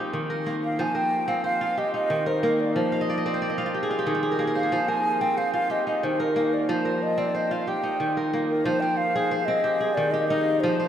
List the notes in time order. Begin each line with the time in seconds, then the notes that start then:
Already playing: A#3 C4 D#4 F4 G4 A#4 C5
0.13 D#3
0.30 A#4
0.46 A#3
0.64 F5
0.79 F3 C5 G#5
0.95 A#4 G5
1.28 C4 F5
1.44 C5 F5
1.61 F4
1.77 G4 D#5
1.94 D#4 D#5
2.10 D#3
2.26 A#4 C5
2.43 A#3 A#4
2.60 D5
2.76 F3 C5
2.92 F5
3.01 D#5
3.10 D5
3.18 D#5
3.26 C4 D5
3.34 C5
3.42 D5
3.50 D#5
3.58 F4 F5
3.66 F4
3.74 G4
3.83 G#4
3.91 F4
3.99 G4
4.06 D#3 G#4
4.15 G4
4.23 G#4
4.32 A#4
4.39 A#3 G#4
4.47 A#4
4.55 C5 F5
4.63 G#4
4.72 F3 C5
4.88 A#4 G#5
5.21 C4 G5
5.37 C5 F5
5.54 F4 F5
5.70 G4 D#5
5.87 D#4 D#5
6.03 D#3 C5
6.20 A#4
6.36 A#3
6.54 D5
6.69 F3 C5
6.85 A#4
7.03 D#5
7.18 C4 D5
7.34 C5 D#5
7.51 F4 F5
7.67 G4 G5
7.83 D#4
8.00 D#3
8.17 A#4
8.33 A#3
8.49 A#4
8.65 F3 C5
8.80 C5 G5
8.97 F5
9.15 G#4 C5
9.31 C5
9.40 F5
9.45 C4 D#5
9.64 G4
9.80 G#4
9.95 D#3 D5
10.11 G4 D#5
10.27 D#4 A#4 D#5
10.60 F3 C5
10.80 C5